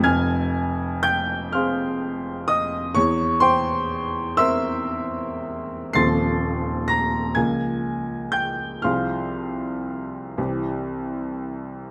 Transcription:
X:1
M:12/8
L:1/8
Q:3/8=41
K:Fm
V:1 name="Grand piano"
[af'a']2 [gg'] [fc'f']2 [ee'] [dd'] [cgc']2 [=ec'=e']3 | [c'=a'c'']2 [bb'] [_a_a']2 [gg'] [fc'f']3 z3 |]
V:2 name="Grand piano" clef=bass
[F,,,F,,]3 [CA]3 =E,,3 [CB]3 | [E,,,E,,F,C=A]3 [D,,F,B,B]3 [C,,F,C_A]3 [C,,=E,CG]3 |]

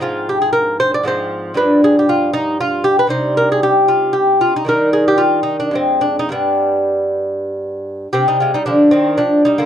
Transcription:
X:1
M:3/4
L:1/16
Q:1/4=114
K:Cm
V:1 name="Lute"
F2 G A B2 c d c4 | =B2 A G F2 E2 F2 G B | c2 B A G2 F2 G2 F E | B2 A G F2 E D C2 D E |
D8 z4 | [CG] [G,E] [A,F] [G,E] [F,D]2 [E,C]2 [F,D]2 [G,E] [D,B,] |]
V:2 name="Lute" clef=bass
[A,,F,C]8 [A,,F,C]4 | [G,,F,D]12 | [C,G,E]12 | [E,G,E]8 [F,,A,]4 |
[G,,G,=B,]12 | C,4 D,4 z4 |]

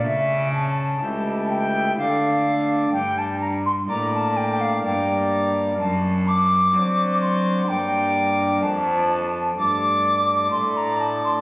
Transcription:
X:1
M:3/4
L:1/16
Q:1/4=63
K:Gdor
V:1 name="Flute"
e2 a4 g2 f4 | g a b c' b a g f g3 z | a2 d'4 c'2 g4 | a4 d'4 c' b a c' |]
V:2 name="Pipe organ"
^C,4 [^C,,A,EG]4 [D,A,Dd]4 | G,,4 [A,,B,Dd]4 [G,,B,Dd]4 | ^F,,4 [^F,CDd]4 [G,,B,Dd]4 | F,,4 [G,,A,Dd]4 [A,,A,Dd]4 |]
V:3 name="Cello" clef=bass
^C,4 ^C,,4 D,4 | G,,4 A,,4 G,,4 | ^F,,4 ^F,4 G,,4 | F,,4 G,,4 A,,4 |]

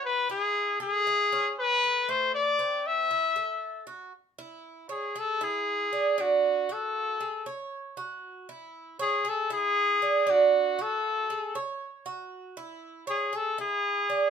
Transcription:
X:1
M:4/4
L:1/8
Q:1/4=117
K:E
V:1 name="Trumpet"
B G2 G3 B2 | =c =d2 e4 z | z3 G A G3 | F2 A3 z3 |
z3 G A G3 | F2 A3 z3 | z3 G A G3 |]
V:2 name="Cuban tres"
F E2 A E C2 A | A,2 =C2 E A2 F | z E2 c G E2 =d | =D2 F2 G c2 F- |
F E2 c G E2 =d | =D2 F2 G c2 F- | F E2 c G E2 =d |]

